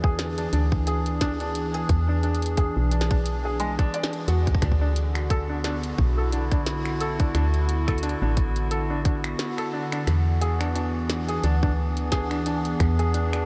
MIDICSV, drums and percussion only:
0, 0, Header, 1, 2, 480
1, 0, Start_track
1, 0, Tempo, 681818
1, 1333, Time_signature, 4, 2, 24, 8
1, 9472, End_track
2, 0, Start_track
2, 0, Title_t, "Drums"
2, 27, Note_on_c, 9, 36, 120
2, 97, Note_off_c, 9, 36, 0
2, 132, Note_on_c, 9, 38, 112
2, 132, Note_on_c, 9, 42, 75
2, 203, Note_off_c, 9, 38, 0
2, 203, Note_off_c, 9, 42, 0
2, 267, Note_on_c, 9, 42, 55
2, 337, Note_off_c, 9, 42, 0
2, 372, Note_on_c, 9, 42, 77
2, 442, Note_off_c, 9, 42, 0
2, 507, Note_on_c, 9, 36, 102
2, 577, Note_off_c, 9, 36, 0
2, 612, Note_on_c, 9, 42, 76
2, 683, Note_off_c, 9, 42, 0
2, 747, Note_on_c, 9, 42, 50
2, 817, Note_off_c, 9, 42, 0
2, 852, Note_on_c, 9, 36, 109
2, 852, Note_on_c, 9, 38, 119
2, 852, Note_on_c, 9, 42, 75
2, 923, Note_off_c, 9, 36, 0
2, 923, Note_off_c, 9, 38, 0
2, 923, Note_off_c, 9, 42, 0
2, 987, Note_on_c, 9, 42, 36
2, 1058, Note_off_c, 9, 42, 0
2, 1092, Note_on_c, 9, 42, 79
2, 1163, Note_off_c, 9, 42, 0
2, 1227, Note_on_c, 9, 42, 50
2, 1297, Note_off_c, 9, 42, 0
2, 1332, Note_on_c, 9, 42, 72
2, 1333, Note_on_c, 9, 36, 116
2, 1403, Note_off_c, 9, 36, 0
2, 1403, Note_off_c, 9, 42, 0
2, 1572, Note_on_c, 9, 42, 35
2, 1642, Note_off_c, 9, 42, 0
2, 1652, Note_on_c, 9, 42, 46
2, 1706, Note_off_c, 9, 42, 0
2, 1706, Note_on_c, 9, 42, 50
2, 1731, Note_off_c, 9, 42, 0
2, 1731, Note_on_c, 9, 42, 59
2, 1802, Note_off_c, 9, 42, 0
2, 1812, Note_on_c, 9, 42, 72
2, 1813, Note_on_c, 9, 36, 101
2, 1882, Note_off_c, 9, 42, 0
2, 1883, Note_off_c, 9, 36, 0
2, 2052, Note_on_c, 9, 42, 74
2, 2119, Note_on_c, 9, 38, 115
2, 2122, Note_off_c, 9, 42, 0
2, 2187, Note_on_c, 9, 42, 52
2, 2188, Note_on_c, 9, 36, 108
2, 2190, Note_off_c, 9, 38, 0
2, 2258, Note_off_c, 9, 36, 0
2, 2258, Note_off_c, 9, 42, 0
2, 2293, Note_on_c, 9, 42, 75
2, 2363, Note_off_c, 9, 42, 0
2, 2533, Note_on_c, 9, 42, 69
2, 2603, Note_off_c, 9, 42, 0
2, 2667, Note_on_c, 9, 36, 117
2, 2668, Note_on_c, 9, 42, 51
2, 2738, Note_off_c, 9, 36, 0
2, 2738, Note_off_c, 9, 42, 0
2, 2773, Note_on_c, 9, 42, 76
2, 2841, Note_on_c, 9, 38, 118
2, 2844, Note_off_c, 9, 42, 0
2, 2908, Note_on_c, 9, 42, 35
2, 2911, Note_off_c, 9, 38, 0
2, 2979, Note_off_c, 9, 42, 0
2, 3013, Note_on_c, 9, 42, 72
2, 3084, Note_off_c, 9, 42, 0
2, 3148, Note_on_c, 9, 36, 96
2, 3148, Note_on_c, 9, 42, 48
2, 3200, Note_off_c, 9, 36, 0
2, 3200, Note_on_c, 9, 36, 81
2, 3218, Note_off_c, 9, 42, 0
2, 3253, Note_off_c, 9, 36, 0
2, 3253, Note_on_c, 9, 26, 57
2, 3253, Note_on_c, 9, 36, 100
2, 3253, Note_on_c, 9, 42, 72
2, 3320, Note_off_c, 9, 36, 0
2, 3320, Note_on_c, 9, 36, 53
2, 3324, Note_off_c, 9, 26, 0
2, 3324, Note_off_c, 9, 42, 0
2, 3391, Note_off_c, 9, 36, 0
2, 3493, Note_on_c, 9, 42, 73
2, 3563, Note_off_c, 9, 42, 0
2, 3628, Note_on_c, 9, 26, 74
2, 3628, Note_on_c, 9, 42, 47
2, 3698, Note_off_c, 9, 26, 0
2, 3698, Note_off_c, 9, 42, 0
2, 3733, Note_on_c, 9, 36, 112
2, 3733, Note_on_c, 9, 42, 73
2, 3803, Note_off_c, 9, 36, 0
2, 3804, Note_off_c, 9, 42, 0
2, 3973, Note_on_c, 9, 26, 47
2, 3973, Note_on_c, 9, 38, 112
2, 3973, Note_on_c, 9, 42, 69
2, 4043, Note_off_c, 9, 26, 0
2, 4043, Note_off_c, 9, 38, 0
2, 4043, Note_off_c, 9, 42, 0
2, 4108, Note_on_c, 9, 42, 50
2, 4178, Note_off_c, 9, 42, 0
2, 4213, Note_on_c, 9, 36, 100
2, 4283, Note_off_c, 9, 36, 0
2, 4453, Note_on_c, 9, 42, 72
2, 4523, Note_off_c, 9, 42, 0
2, 4587, Note_on_c, 9, 36, 101
2, 4587, Note_on_c, 9, 42, 49
2, 4657, Note_off_c, 9, 42, 0
2, 4658, Note_off_c, 9, 36, 0
2, 4692, Note_on_c, 9, 38, 116
2, 4692, Note_on_c, 9, 42, 72
2, 4762, Note_off_c, 9, 38, 0
2, 4762, Note_off_c, 9, 42, 0
2, 4826, Note_on_c, 9, 26, 56
2, 4826, Note_on_c, 9, 42, 34
2, 4896, Note_off_c, 9, 26, 0
2, 4896, Note_off_c, 9, 42, 0
2, 4932, Note_on_c, 9, 42, 72
2, 5002, Note_off_c, 9, 42, 0
2, 5066, Note_on_c, 9, 42, 50
2, 5067, Note_on_c, 9, 36, 115
2, 5137, Note_off_c, 9, 36, 0
2, 5137, Note_off_c, 9, 42, 0
2, 5173, Note_on_c, 9, 26, 61
2, 5173, Note_on_c, 9, 42, 73
2, 5243, Note_off_c, 9, 26, 0
2, 5243, Note_off_c, 9, 42, 0
2, 5307, Note_on_c, 9, 42, 32
2, 5377, Note_off_c, 9, 42, 0
2, 5412, Note_on_c, 9, 42, 74
2, 5483, Note_off_c, 9, 42, 0
2, 5547, Note_on_c, 9, 26, 77
2, 5547, Note_on_c, 9, 36, 97
2, 5547, Note_on_c, 9, 42, 48
2, 5617, Note_off_c, 9, 26, 0
2, 5617, Note_off_c, 9, 36, 0
2, 5617, Note_off_c, 9, 42, 0
2, 5618, Note_on_c, 9, 42, 38
2, 5653, Note_off_c, 9, 42, 0
2, 5653, Note_on_c, 9, 42, 73
2, 5698, Note_off_c, 9, 42, 0
2, 5698, Note_on_c, 9, 42, 30
2, 5768, Note_off_c, 9, 42, 0
2, 5892, Note_on_c, 9, 36, 97
2, 5892, Note_on_c, 9, 42, 72
2, 5963, Note_off_c, 9, 36, 0
2, 5963, Note_off_c, 9, 42, 0
2, 6027, Note_on_c, 9, 42, 48
2, 6097, Note_off_c, 9, 42, 0
2, 6133, Note_on_c, 9, 42, 74
2, 6203, Note_off_c, 9, 42, 0
2, 6372, Note_on_c, 9, 36, 108
2, 6372, Note_on_c, 9, 42, 68
2, 6443, Note_off_c, 9, 36, 0
2, 6443, Note_off_c, 9, 42, 0
2, 6506, Note_on_c, 9, 26, 75
2, 6506, Note_on_c, 9, 42, 48
2, 6577, Note_off_c, 9, 26, 0
2, 6577, Note_off_c, 9, 42, 0
2, 6611, Note_on_c, 9, 38, 113
2, 6611, Note_on_c, 9, 42, 77
2, 6682, Note_off_c, 9, 38, 0
2, 6682, Note_off_c, 9, 42, 0
2, 6746, Note_on_c, 9, 26, 58
2, 6746, Note_on_c, 9, 42, 32
2, 6816, Note_off_c, 9, 26, 0
2, 6816, Note_off_c, 9, 42, 0
2, 6986, Note_on_c, 9, 26, 77
2, 6986, Note_on_c, 9, 42, 47
2, 7057, Note_off_c, 9, 26, 0
2, 7057, Note_off_c, 9, 42, 0
2, 7092, Note_on_c, 9, 26, 61
2, 7092, Note_on_c, 9, 42, 74
2, 7162, Note_off_c, 9, 26, 0
2, 7162, Note_off_c, 9, 42, 0
2, 7332, Note_on_c, 9, 42, 76
2, 7403, Note_off_c, 9, 42, 0
2, 7467, Note_on_c, 9, 26, 81
2, 7467, Note_on_c, 9, 42, 50
2, 7537, Note_off_c, 9, 26, 0
2, 7537, Note_off_c, 9, 42, 0
2, 7572, Note_on_c, 9, 42, 73
2, 7643, Note_off_c, 9, 42, 0
2, 7811, Note_on_c, 9, 26, 51
2, 7811, Note_on_c, 9, 38, 110
2, 7811, Note_on_c, 9, 42, 74
2, 7882, Note_off_c, 9, 26, 0
2, 7882, Note_off_c, 9, 38, 0
2, 7882, Note_off_c, 9, 42, 0
2, 7945, Note_on_c, 9, 42, 52
2, 8016, Note_off_c, 9, 42, 0
2, 8051, Note_on_c, 9, 42, 75
2, 8121, Note_off_c, 9, 42, 0
2, 8186, Note_on_c, 9, 36, 97
2, 8257, Note_off_c, 9, 36, 0
2, 8426, Note_on_c, 9, 42, 49
2, 8496, Note_off_c, 9, 42, 0
2, 8531, Note_on_c, 9, 38, 110
2, 8531, Note_on_c, 9, 42, 78
2, 8532, Note_on_c, 9, 36, 100
2, 8602, Note_off_c, 9, 38, 0
2, 8602, Note_off_c, 9, 42, 0
2, 8603, Note_off_c, 9, 36, 0
2, 8666, Note_on_c, 9, 26, 62
2, 8666, Note_on_c, 9, 42, 34
2, 8736, Note_off_c, 9, 26, 0
2, 8736, Note_off_c, 9, 42, 0
2, 8772, Note_on_c, 9, 42, 76
2, 8842, Note_off_c, 9, 42, 0
2, 8906, Note_on_c, 9, 42, 50
2, 8977, Note_off_c, 9, 42, 0
2, 9012, Note_on_c, 9, 26, 64
2, 9012, Note_on_c, 9, 36, 110
2, 9012, Note_on_c, 9, 42, 74
2, 9082, Note_off_c, 9, 26, 0
2, 9082, Note_off_c, 9, 36, 0
2, 9082, Note_off_c, 9, 42, 0
2, 9146, Note_on_c, 9, 42, 35
2, 9217, Note_off_c, 9, 42, 0
2, 9252, Note_on_c, 9, 42, 80
2, 9323, Note_off_c, 9, 42, 0
2, 9386, Note_on_c, 9, 26, 80
2, 9386, Note_on_c, 9, 42, 51
2, 9456, Note_off_c, 9, 26, 0
2, 9456, Note_off_c, 9, 42, 0
2, 9472, End_track
0, 0, End_of_file